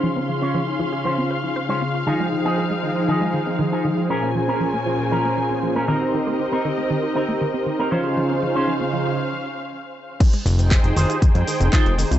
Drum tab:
CC |----------------|----------------|----------------|----------------|
HH |x-x---x---x-x---|x-x--xx---x-x-xx|x-x-xxx-x-xxx-xx|xxx-x-xxx-xxxxxx|
SH |----------------|----------------|----------------|----------------|
CP |----------------|----------------|----------------|----------------|
BD |----------------|----------------|----------------|----------------|

CC |----------------|x---------------|
HH |xxxxxxxx--------|xxoxxxoxxxoxxxox|
SH |----------------|x-xxx-xxx-xxx-xx|
CP |----------------|----x-------x---|
BD |----------------|o---o---o---o---|